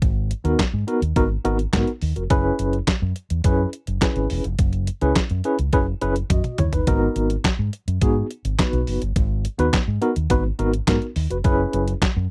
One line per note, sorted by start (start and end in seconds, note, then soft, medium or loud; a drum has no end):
0.02 0.32 G#1 loud
0.02 kick loud
0.02 closed hi-hat medium
0.31 closed hi-hat medium
0.44 0.55 D#2 medium
0.44 0.62 B3 medium
0.44 0.62 D#4 medium
0.44 0.63 F#4 medium
0.44 0.63 A#4 medium
0.44 closed hi-hat medium
0.59 kick medium
0.59 snare loud
0.59 clap medium
0.59 closed hi-hat medium
0.74 0.83 G#2 medium
0.87 0.99 B3 medium
0.87 0.99 D#4 medium
0.87 1.00 F#4 medium
0.87 1.00 A#4 loud
0.87 closed hi-hat medium
1.02 1.12 D#2 loud
1.02 closed hi-hat medium
1.16 1.36 G#1 medium
1.16 1.28 B3 medium
1.16 1.28 D#4 medium
1.16 1.28 F#4 medium
1.16 1.28 A#4 loud
1.16 kick loud
1.16 closed hi-hat medium
1.45 1.65 G#1 medium
1.45 1.57 B3 loud
1.45 1.57 D#4 loud
1.45 1.57 F#4 medium
1.45 1.57 A#4 loud
1.45 closed hi-hat medium
1.59 closed hi-hat medium
1.73 1.83 G#2 loud
1.73 1.91 B3 medium
1.73 1.91 D#4 medium
1.73 1.91 F#4 medium
1.73 1.91 A#4 medium
1.73 kick loud
1.73 snare loud
1.73 clap medium
1.73 closed hi-hat medium
1.87 closed hi-hat soft
2.02 2.12 D#2 medium
2.02 open hi-hat medium
2.16 2.26 F1 medium
2.16 2.22 F#4 medium
2.16 2.22 A#4 loud
2.16 closed hi-hat medium
2.30 2.50 F#1 loud
2.30 2.77 C#4 loud
2.30 2.77 E4 medium
2.30 2.78 G#4 medium
2.30 2.78 B4 loud
2.30 kick loud
2.30 closed hi-hat medium
2.59 2.79 F#1 medium
2.59 closed hi-hat medium
2.73 closed hi-hat soft
2.87 muted fingered electric bass stroke soft
2.87 kick loud
2.87 snare loud
2.87 clap medium
2.87 closed hi-hat medium
3.02 3.12 F#2 medium
3.16 closed hi-hat medium
3.30 3.40 E2 medium
3.30 closed hi-hat medium
3.44 3.64 F#2 loud
3.44 3.68 C#4 medium
3.44 3.68 E4 medium
3.44 3.69 G#4 medium
3.44 3.69 B4 medium
3.44 kick loud
3.44 closed hi-hat medium
3.73 closed hi-hat medium
3.87 3.98 F#1 medium
3.87 closed hi-hat medium
4.02 4.43 C#4 medium
4.02 4.43 E4 medium
4.02 4.43 G#4 medium
4.02 4.44 B4 medium
4.02 kick loud
4.02 snare loud
4.02 clap medium
4.02 closed hi-hat loud
4.16 4.26 G#1 medium
4.16 closed hi-hat soft
4.30 4.41 E1 loud
4.30 open hi-hat medium
4.44 4.55 F1 medium
4.44 closed hi-hat medium
4.59 4.88 F#1 loud
4.59 kick loud
4.59 closed hi-hat medium
4.73 closed hi-hat soft
4.87 closed hi-hat medium
5.01 5.12 C#2 medium
5.01 5.19 C#4 medium
5.01 5.20 E4 medium
5.01 5.20 G#4 medium
5.01 5.20 B4 loud
5.01 closed hi-hat medium
5.16 kick loud
5.16 snare loud
5.16 clap medium
5.16 closed hi-hat medium
5.30 5.40 F#2 loud
5.30 closed hi-hat soft
5.44 5.57 C#4 medium
5.44 5.57 E4 medium
5.44 5.57 G#4 medium
5.44 5.57 B4 medium
5.44 closed hi-hat medium
5.59 5.69 C#2 medium
5.59 closed hi-hat medium
5.73 5.93 F#1 medium
5.73 5.85 C#4 medium
5.73 5.85 E4 medium
5.73 5.85 G#4 medium
5.73 5.85 B4 loud
5.73 kick loud
5.73 closed hi-hat medium
6.01 6.22 F#1 medium
6.01 6.13 C#4 loud
6.01 6.13 E4 medium
6.01 6.14 G#4 medium
6.01 6.14 B4 loud
6.01 closed hi-hat medium
6.16 closed hi-hat medium
6.30 6.40 F#2 loud
6.30 6.58 F#4 soft
6.30 6.57 D#5 medium
6.30 kick loud
6.30 closed hi-hat medium
6.30 high tom medium
6.44 closed hi-hat soft
6.44 mid tom medium
6.58 6.69 D#2 medium
6.58 6.73 E4 medium
6.58 6.73 C#5 medium
6.58 closed hi-hat medium
6.58 mid tom medium
6.73 6.83 G1 medium
6.73 6.86 D#4 medium
6.73 7.01 B4 medium
6.73 closed hi-hat medium
6.73 floor tom loud
6.87 7.07 G#1 loud
6.87 7.34 B3 loud
6.87 7.35 D#4 loud
6.87 7.35 F#4 medium
6.87 7.35 A#4 loud
6.87 kick loud
6.87 closed hi-hat medium
7.16 7.36 G#1 medium
7.16 closed hi-hat medium
7.30 closed hi-hat medium
7.44 muted fingered electric bass stroke soft
7.44 kick medium
7.44 snare loud
7.44 clap medium
7.44 closed hi-hat medium
7.59 7.69 G#2 loud
7.73 closed hi-hat medium
7.88 7.97 F#2 medium
7.88 closed hi-hat medium
8.01 8.22 G#2 loud
8.01 8.25 B3 medium
8.01 8.25 D#4 medium
8.01 8.26 F#4 medium
8.01 8.26 G#4 medium
8.01 kick loud
8.01 closed hi-hat medium
8.31 closed hi-hat medium
8.45 8.55 G#1 medium
8.45 closed hi-hat medium
8.59 9.00 B3 medium
8.59 9.00 D#4 medium
8.59 9.01 F#4 medium
8.59 9.01 B4 medium
8.59 kick loud
8.59 snare loud
8.59 clap medium
8.59 closed hi-hat loud
8.73 8.83 B1 medium
8.73 closed hi-hat soft
8.87 8.97 F#1 medium
8.87 open hi-hat medium
9.02 9.12 G1 medium
9.02 closed hi-hat medium
9.16 9.46 G#1 loud
9.16 kick loud
9.16 closed hi-hat medium
9.45 closed hi-hat medium
9.59 9.69 D#2 medium
9.59 9.77 B3 medium
9.59 9.77 D#4 medium
9.59 9.77 F#4 medium
9.59 9.77 B4 loud
9.59 closed hi-hat medium
9.73 kick loud
9.73 snare loud
9.73 clap medium
9.73 closed hi-hat medium
9.88 9.98 G#2 medium
10.02 10.14 B3 medium
10.02 10.14 D#4 medium
10.02 10.14 F#4 medium
10.02 10.14 A#4 medium
10.02 closed hi-hat medium
10.16 10.26 D#2 medium
10.16 closed hi-hat medium
10.30 10.50 G#1 loud
10.30 10.42 B3 loud
10.30 10.42 D#4 medium
10.30 10.42 F#4 medium
10.30 10.43 B4 loud
10.30 kick loud
10.30 closed hi-hat medium
10.59 10.79 G#1 medium
10.59 10.71 B3 loud
10.59 10.71 D#4 loud
10.59 10.71 F#4 medium
10.59 10.71 A#4 loud
10.59 closed hi-hat medium
10.74 closed hi-hat medium
10.87 10.98 G#2 loud
10.87 11.05 B3 medium
10.87 11.05 D#4 medium
10.87 11.06 F#4 medium
10.87 11.06 A#4 medium
10.87 kick loud
10.87 snare loud
10.87 clap medium
10.87 closed hi-hat loud
11.02 closed hi-hat soft
11.16 11.26 D#2 loud
11.16 open hi-hat medium
11.30 11.41 F1 medium
11.30 11.36 F#4 medium
11.30 11.37 B4 loud
11.30 closed hi-hat medium
11.44 11.64 F#1 loud
11.44 11.92 C#4 loud
11.44 11.92 E4 medium
11.44 11.92 G#4 medium
11.44 11.92 B4 loud
11.44 kick loud
11.44 closed hi-hat medium
11.73 11.93 F#1 loud
11.73 closed hi-hat medium
11.88 closed hi-hat medium
12.02 muted fingered electric bass stroke medium
12.02 kick loud
12.02 snare loud
12.02 clap medium
12.02 closed hi-hat medium
12.16 12.26 F#2 medium